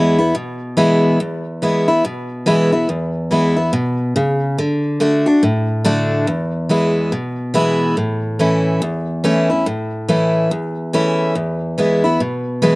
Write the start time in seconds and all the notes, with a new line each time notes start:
Already playing: E2 E3 G#3 B3 E4
0.18 B3 E4
0.35 B2
0.77 E3 G#3 B3 E4
1.20 E2
1.62 E3 G#3 B3 E4
1.88 B3 E4
2.05 B2
2.46 E3 G#3 B3 E4
2.72 B3 E4
2.89 E2
3.31 E3 G#3 B3 E4
3.56 B3 E4
3.73 B2
4.16 C#3
4.58 D3
5.00 D3 A3 D4 F#4
5.26 D4 F#4
5.43 A2
5.85 D3 A3 D4 F#4
6.27 E2
6.69 E3 G#3 B3 E4
7.12 B2
7.54 E3 G#3 B3 E4
7.97 A2
8.39 E3 A3 C#4 E4
8.82 E2
9.24 E3 A3 C#4 E4
9.50 C#4 E4
9.66 A2
10.08 E3 A3 C#4 E4
10.51 E2
10.93 E3 A3 C#4 E4
11.35 E2
11.78 E3 G#3 B3 E4
12.04 B3 E4
12.20 B2
12.62 E3 G#3 B3 E4